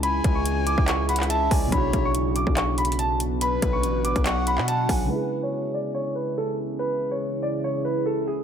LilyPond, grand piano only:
\new Staff \with { instrumentName = "Grand piano" } { \time 4/4 \key cis \phrygian \tempo 4 = 142 b''8. cis'''8. d'''8 cis'''8 b''8 a''8 gis''8 | b''8. cis'''8. d'''8 cis'''8 b''8 a''8 r8 | b''8. cis'''8. d'''8 cis'''8 b''8 a''8 gis''8 | b'8. cis''8. d''8 cis''8 b'8 a'8 r8 |
b'8. cis''8. d''8 cis''8 b'8 a'8 gis'8 | }